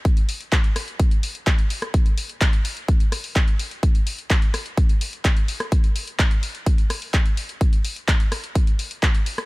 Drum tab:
HH |xxoxxxoxxxoxxxox|xxoxxxoxxxooxxox|xxoxxxoxxxoxxxox|xxoxxxoxxxooxxox|
CP |----x-------x---|----x-------x---|----x-------x---|----x-------x---|
SD |------r--------r|----------r-----|------r--------r|----------r-----|
BD |o---o---o---o---|o---o---o---o---|o---o---o---o---|o---o---o---o---|

HH |xxoxxxoxxxoxxxox|
CP |----x-------x---|
SD |------r--------r|
BD |o---o---o---o---|